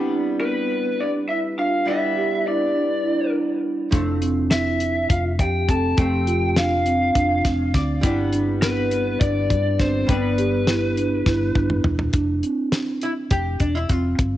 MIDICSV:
0, 0, Header, 1, 7, 480
1, 0, Start_track
1, 0, Tempo, 586510
1, 1532, Time_signature, 7, 3, 24, 8
1, 11762, End_track
2, 0, Start_track
2, 0, Title_t, "Lead electric guitar"
2, 0, Program_c, 0, 29
2, 332, Note_on_c, 0, 71, 80
2, 822, Note_on_c, 0, 74, 84
2, 826, Note_off_c, 0, 71, 0
2, 886, Note_off_c, 0, 74, 0
2, 1055, Note_on_c, 0, 76, 83
2, 1119, Note_off_c, 0, 76, 0
2, 1302, Note_on_c, 0, 77, 101
2, 1537, Note_off_c, 0, 77, 0
2, 1541, Note_on_c, 0, 76, 100
2, 2023, Note_off_c, 0, 76, 0
2, 2027, Note_on_c, 0, 74, 76
2, 2707, Note_off_c, 0, 74, 0
2, 3694, Note_on_c, 0, 76, 76
2, 4171, Note_off_c, 0, 76, 0
2, 4174, Note_on_c, 0, 77, 92
2, 4239, Note_off_c, 0, 77, 0
2, 4424, Note_on_c, 0, 79, 79
2, 4643, Note_off_c, 0, 79, 0
2, 4668, Note_on_c, 0, 81, 93
2, 4900, Note_off_c, 0, 81, 0
2, 4904, Note_on_c, 0, 79, 88
2, 5380, Note_on_c, 0, 77, 69
2, 5394, Note_off_c, 0, 79, 0
2, 6065, Note_off_c, 0, 77, 0
2, 7058, Note_on_c, 0, 71, 82
2, 7528, Note_off_c, 0, 71, 0
2, 7531, Note_on_c, 0, 74, 103
2, 8018, Note_off_c, 0, 74, 0
2, 8021, Note_on_c, 0, 72, 91
2, 8263, Note_off_c, 0, 72, 0
2, 8266, Note_on_c, 0, 71, 88
2, 9667, Note_off_c, 0, 71, 0
2, 11762, End_track
3, 0, Start_track
3, 0, Title_t, "Vibraphone"
3, 0, Program_c, 1, 11
3, 326, Note_on_c, 1, 59, 66
3, 776, Note_off_c, 1, 59, 0
3, 822, Note_on_c, 1, 62, 74
3, 927, Note_off_c, 1, 62, 0
3, 1068, Note_on_c, 1, 64, 76
3, 1172, Note_off_c, 1, 64, 0
3, 1299, Note_on_c, 1, 65, 82
3, 1519, Note_off_c, 1, 65, 0
3, 1546, Note_on_c, 1, 64, 83
3, 1987, Note_off_c, 1, 64, 0
3, 2026, Note_on_c, 1, 62, 70
3, 2707, Note_off_c, 1, 62, 0
3, 3694, Note_on_c, 1, 64, 71
3, 4142, Note_off_c, 1, 64, 0
3, 4180, Note_on_c, 1, 65, 71
3, 4287, Note_off_c, 1, 65, 0
3, 4431, Note_on_c, 1, 67, 68
3, 4646, Note_off_c, 1, 67, 0
3, 4667, Note_on_c, 1, 69, 88
3, 4885, Note_off_c, 1, 69, 0
3, 4914, Note_on_c, 1, 67, 75
3, 5352, Note_off_c, 1, 67, 0
3, 5401, Note_on_c, 1, 65, 64
3, 6075, Note_off_c, 1, 65, 0
3, 7059, Note_on_c, 1, 59, 79
3, 7504, Note_off_c, 1, 59, 0
3, 7556, Note_on_c, 1, 62, 83
3, 7992, Note_off_c, 1, 62, 0
3, 8028, Note_on_c, 1, 60, 76
3, 8245, Note_off_c, 1, 60, 0
3, 8258, Note_on_c, 1, 59, 66
3, 9663, Note_off_c, 1, 59, 0
3, 11762, End_track
4, 0, Start_track
4, 0, Title_t, "Marimba"
4, 0, Program_c, 2, 12
4, 85, Note_on_c, 2, 62, 77
4, 482, Note_off_c, 2, 62, 0
4, 1292, Note_on_c, 2, 62, 71
4, 1687, Note_off_c, 2, 62, 0
4, 1768, Note_on_c, 2, 67, 77
4, 1967, Note_off_c, 2, 67, 0
4, 2008, Note_on_c, 2, 64, 72
4, 2207, Note_off_c, 2, 64, 0
4, 2255, Note_on_c, 2, 62, 66
4, 2451, Note_off_c, 2, 62, 0
4, 2491, Note_on_c, 2, 64, 72
4, 2689, Note_off_c, 2, 64, 0
4, 2729, Note_on_c, 2, 62, 70
4, 3125, Note_off_c, 2, 62, 0
4, 3206, Note_on_c, 2, 62, 74
4, 3407, Note_off_c, 2, 62, 0
4, 3449, Note_on_c, 2, 60, 73
4, 3845, Note_off_c, 2, 60, 0
4, 4645, Note_on_c, 2, 60, 69
4, 5043, Note_off_c, 2, 60, 0
4, 5126, Note_on_c, 2, 65, 75
4, 5327, Note_off_c, 2, 65, 0
4, 5367, Note_on_c, 2, 62, 66
4, 5568, Note_off_c, 2, 62, 0
4, 5607, Note_on_c, 2, 60, 70
4, 5807, Note_off_c, 2, 60, 0
4, 5853, Note_on_c, 2, 62, 85
4, 6051, Note_off_c, 2, 62, 0
4, 6088, Note_on_c, 2, 60, 71
4, 6485, Note_off_c, 2, 60, 0
4, 6571, Note_on_c, 2, 64, 80
4, 6770, Note_off_c, 2, 64, 0
4, 6817, Note_on_c, 2, 62, 81
4, 7210, Note_off_c, 2, 62, 0
4, 8011, Note_on_c, 2, 62, 73
4, 8406, Note_off_c, 2, 62, 0
4, 8494, Note_on_c, 2, 67, 80
4, 8691, Note_off_c, 2, 67, 0
4, 8732, Note_on_c, 2, 64, 74
4, 8930, Note_off_c, 2, 64, 0
4, 8970, Note_on_c, 2, 62, 69
4, 9169, Note_off_c, 2, 62, 0
4, 9213, Note_on_c, 2, 64, 81
4, 9411, Note_off_c, 2, 64, 0
4, 9448, Note_on_c, 2, 62, 64
4, 9845, Note_off_c, 2, 62, 0
4, 9933, Note_on_c, 2, 62, 79
4, 10130, Note_off_c, 2, 62, 0
4, 10172, Note_on_c, 2, 60, 68
4, 10567, Note_off_c, 2, 60, 0
4, 11369, Note_on_c, 2, 60, 71
4, 11762, Note_off_c, 2, 60, 0
4, 11762, End_track
5, 0, Start_track
5, 0, Title_t, "Hollow-body jazz guitar"
5, 0, Program_c, 3, 26
5, 0, Note_on_c, 3, 55, 74
5, 0, Note_on_c, 3, 59, 63
5, 0, Note_on_c, 3, 62, 78
5, 1493, Note_off_c, 3, 55, 0
5, 1499, Note_off_c, 3, 59, 0
5, 1505, Note_off_c, 3, 62, 0
5, 1518, Note_on_c, 3, 55, 64
5, 1530, Note_on_c, 3, 59, 60
5, 1540, Note_on_c, 3, 62, 67
5, 3174, Note_off_c, 3, 55, 0
5, 3180, Note_off_c, 3, 59, 0
5, 3185, Note_off_c, 3, 62, 0
5, 3199, Note_on_c, 3, 53, 74
5, 3208, Note_on_c, 3, 57, 70
5, 3223, Note_on_c, 3, 60, 72
5, 4855, Note_off_c, 3, 53, 0
5, 4859, Note_off_c, 3, 57, 0
5, 4867, Note_off_c, 3, 60, 0
5, 4884, Note_on_c, 3, 53, 56
5, 4895, Note_on_c, 3, 57, 58
5, 4904, Note_on_c, 3, 60, 69
5, 6092, Note_on_c, 3, 77, 58
5, 6316, Note_off_c, 3, 77, 0
5, 6334, Note_on_c, 3, 74, 64
5, 6537, Note_off_c, 3, 53, 0
5, 6542, Note_off_c, 3, 57, 0
5, 6547, Note_off_c, 3, 60, 0
5, 6558, Note_off_c, 3, 74, 0
5, 6558, Note_on_c, 3, 55, 73
5, 6569, Note_on_c, 3, 59, 66
5, 6581, Note_on_c, 3, 62, 81
5, 8213, Note_off_c, 3, 55, 0
5, 8219, Note_off_c, 3, 59, 0
5, 8225, Note_off_c, 3, 62, 0
5, 8236, Note_on_c, 3, 55, 61
5, 8252, Note_on_c, 3, 59, 59
5, 8263, Note_on_c, 3, 62, 69
5, 9892, Note_off_c, 3, 55, 0
5, 9900, Note_off_c, 3, 59, 0
5, 9906, Note_off_c, 3, 62, 0
5, 10664, Note_on_c, 3, 64, 77
5, 10727, Note_off_c, 3, 64, 0
5, 10891, Note_on_c, 3, 67, 86
5, 11115, Note_off_c, 3, 67, 0
5, 11132, Note_on_c, 3, 62, 69
5, 11252, Note_off_c, 3, 62, 0
5, 11252, Note_on_c, 3, 64, 76
5, 11374, Note_off_c, 3, 64, 0
5, 11374, Note_on_c, 3, 65, 75
5, 11762, Note_off_c, 3, 65, 0
5, 11762, End_track
6, 0, Start_track
6, 0, Title_t, "Fingered electric bass"
6, 0, Program_c, 4, 33
6, 3212, Note_on_c, 4, 29, 83
6, 4141, Note_off_c, 4, 29, 0
6, 4173, Note_on_c, 4, 29, 85
6, 4413, Note_on_c, 4, 41, 80
6, 4426, Note_off_c, 4, 29, 0
6, 4640, Note_off_c, 4, 41, 0
6, 4655, Note_on_c, 4, 29, 82
6, 4880, Note_off_c, 4, 29, 0
6, 4893, Note_on_c, 4, 29, 94
6, 5821, Note_off_c, 4, 29, 0
6, 5850, Note_on_c, 4, 29, 87
6, 6078, Note_off_c, 4, 29, 0
6, 6098, Note_on_c, 4, 29, 85
6, 6322, Note_off_c, 4, 29, 0
6, 6337, Note_on_c, 4, 38, 96
6, 6562, Note_off_c, 4, 38, 0
6, 6577, Note_on_c, 4, 31, 89
6, 7503, Note_off_c, 4, 31, 0
6, 7537, Note_on_c, 4, 31, 88
6, 7774, Note_on_c, 4, 43, 90
6, 7786, Note_off_c, 4, 31, 0
6, 8000, Note_off_c, 4, 43, 0
6, 8015, Note_on_c, 4, 31, 87
6, 8241, Note_off_c, 4, 31, 0
6, 8254, Note_on_c, 4, 31, 93
6, 9181, Note_off_c, 4, 31, 0
6, 9217, Note_on_c, 4, 31, 82
6, 9441, Note_off_c, 4, 31, 0
6, 9453, Note_on_c, 4, 31, 77
6, 9679, Note_off_c, 4, 31, 0
6, 9689, Note_on_c, 4, 28, 94
6, 9917, Note_off_c, 4, 28, 0
6, 9932, Note_on_c, 4, 29, 82
6, 10158, Note_off_c, 4, 29, 0
6, 10891, Note_on_c, 4, 29, 83
6, 11118, Note_off_c, 4, 29, 0
6, 11131, Note_on_c, 4, 28, 73
6, 11358, Note_off_c, 4, 28, 0
6, 11371, Note_on_c, 4, 29, 87
6, 11598, Note_off_c, 4, 29, 0
6, 11607, Note_on_c, 4, 31, 85
6, 11762, Note_off_c, 4, 31, 0
6, 11762, End_track
7, 0, Start_track
7, 0, Title_t, "Drums"
7, 3210, Note_on_c, 9, 42, 68
7, 3212, Note_on_c, 9, 36, 90
7, 3292, Note_off_c, 9, 42, 0
7, 3294, Note_off_c, 9, 36, 0
7, 3452, Note_on_c, 9, 42, 57
7, 3534, Note_off_c, 9, 42, 0
7, 3689, Note_on_c, 9, 38, 101
7, 3689, Note_on_c, 9, 42, 71
7, 3771, Note_off_c, 9, 38, 0
7, 3771, Note_off_c, 9, 42, 0
7, 3930, Note_on_c, 9, 42, 56
7, 4011, Note_off_c, 9, 42, 0
7, 4173, Note_on_c, 9, 36, 92
7, 4174, Note_on_c, 9, 42, 78
7, 4255, Note_off_c, 9, 36, 0
7, 4256, Note_off_c, 9, 42, 0
7, 4413, Note_on_c, 9, 36, 72
7, 4416, Note_on_c, 9, 42, 58
7, 4495, Note_off_c, 9, 36, 0
7, 4498, Note_off_c, 9, 42, 0
7, 4654, Note_on_c, 9, 36, 75
7, 4656, Note_on_c, 9, 42, 61
7, 4736, Note_off_c, 9, 36, 0
7, 4738, Note_off_c, 9, 42, 0
7, 4890, Note_on_c, 9, 42, 76
7, 4893, Note_on_c, 9, 36, 101
7, 4972, Note_off_c, 9, 42, 0
7, 4974, Note_off_c, 9, 36, 0
7, 5133, Note_on_c, 9, 42, 57
7, 5215, Note_off_c, 9, 42, 0
7, 5372, Note_on_c, 9, 38, 102
7, 5372, Note_on_c, 9, 42, 78
7, 5454, Note_off_c, 9, 38, 0
7, 5454, Note_off_c, 9, 42, 0
7, 5613, Note_on_c, 9, 42, 58
7, 5695, Note_off_c, 9, 42, 0
7, 5855, Note_on_c, 9, 36, 101
7, 5855, Note_on_c, 9, 42, 86
7, 5936, Note_off_c, 9, 36, 0
7, 5937, Note_off_c, 9, 42, 0
7, 6096, Note_on_c, 9, 36, 71
7, 6096, Note_on_c, 9, 38, 35
7, 6096, Note_on_c, 9, 42, 71
7, 6178, Note_off_c, 9, 36, 0
7, 6178, Note_off_c, 9, 38, 0
7, 6178, Note_off_c, 9, 42, 0
7, 6336, Note_on_c, 9, 36, 75
7, 6337, Note_on_c, 9, 38, 34
7, 6337, Note_on_c, 9, 42, 59
7, 6418, Note_off_c, 9, 36, 0
7, 6419, Note_off_c, 9, 38, 0
7, 6419, Note_off_c, 9, 42, 0
7, 6575, Note_on_c, 9, 36, 106
7, 6577, Note_on_c, 9, 42, 83
7, 6657, Note_off_c, 9, 36, 0
7, 6658, Note_off_c, 9, 42, 0
7, 6814, Note_on_c, 9, 42, 61
7, 6896, Note_off_c, 9, 42, 0
7, 7056, Note_on_c, 9, 38, 102
7, 7056, Note_on_c, 9, 42, 80
7, 7137, Note_off_c, 9, 38, 0
7, 7137, Note_off_c, 9, 42, 0
7, 7295, Note_on_c, 9, 42, 57
7, 7377, Note_off_c, 9, 42, 0
7, 7537, Note_on_c, 9, 36, 106
7, 7537, Note_on_c, 9, 42, 82
7, 7618, Note_off_c, 9, 36, 0
7, 7619, Note_off_c, 9, 42, 0
7, 7777, Note_on_c, 9, 36, 72
7, 7779, Note_on_c, 9, 42, 61
7, 7859, Note_off_c, 9, 36, 0
7, 7861, Note_off_c, 9, 42, 0
7, 8016, Note_on_c, 9, 36, 73
7, 8016, Note_on_c, 9, 38, 33
7, 8016, Note_on_c, 9, 42, 56
7, 8097, Note_off_c, 9, 38, 0
7, 8097, Note_off_c, 9, 42, 0
7, 8098, Note_off_c, 9, 36, 0
7, 8256, Note_on_c, 9, 42, 73
7, 8257, Note_on_c, 9, 36, 101
7, 8337, Note_off_c, 9, 42, 0
7, 8338, Note_off_c, 9, 36, 0
7, 8496, Note_on_c, 9, 42, 58
7, 8578, Note_off_c, 9, 42, 0
7, 8735, Note_on_c, 9, 38, 98
7, 8735, Note_on_c, 9, 42, 66
7, 8817, Note_off_c, 9, 38, 0
7, 8817, Note_off_c, 9, 42, 0
7, 8981, Note_on_c, 9, 42, 58
7, 9063, Note_off_c, 9, 42, 0
7, 9216, Note_on_c, 9, 38, 57
7, 9217, Note_on_c, 9, 36, 97
7, 9298, Note_off_c, 9, 38, 0
7, 9299, Note_off_c, 9, 36, 0
7, 9455, Note_on_c, 9, 36, 81
7, 9537, Note_off_c, 9, 36, 0
7, 9574, Note_on_c, 9, 45, 70
7, 9656, Note_off_c, 9, 45, 0
7, 9691, Note_on_c, 9, 43, 81
7, 9772, Note_off_c, 9, 43, 0
7, 9811, Note_on_c, 9, 43, 75
7, 9893, Note_off_c, 9, 43, 0
7, 9926, Note_on_c, 9, 42, 74
7, 9931, Note_on_c, 9, 36, 90
7, 10008, Note_off_c, 9, 42, 0
7, 10013, Note_off_c, 9, 36, 0
7, 10172, Note_on_c, 9, 42, 54
7, 10254, Note_off_c, 9, 42, 0
7, 10411, Note_on_c, 9, 38, 97
7, 10411, Note_on_c, 9, 42, 76
7, 10493, Note_off_c, 9, 38, 0
7, 10493, Note_off_c, 9, 42, 0
7, 10651, Note_on_c, 9, 42, 54
7, 10733, Note_off_c, 9, 42, 0
7, 10889, Note_on_c, 9, 42, 77
7, 10892, Note_on_c, 9, 36, 94
7, 10971, Note_off_c, 9, 42, 0
7, 10974, Note_off_c, 9, 36, 0
7, 11128, Note_on_c, 9, 42, 54
7, 11132, Note_on_c, 9, 36, 65
7, 11210, Note_off_c, 9, 42, 0
7, 11214, Note_off_c, 9, 36, 0
7, 11370, Note_on_c, 9, 42, 54
7, 11372, Note_on_c, 9, 36, 75
7, 11452, Note_off_c, 9, 42, 0
7, 11454, Note_off_c, 9, 36, 0
7, 11610, Note_on_c, 9, 42, 70
7, 11612, Note_on_c, 9, 36, 96
7, 11692, Note_off_c, 9, 42, 0
7, 11694, Note_off_c, 9, 36, 0
7, 11762, End_track
0, 0, End_of_file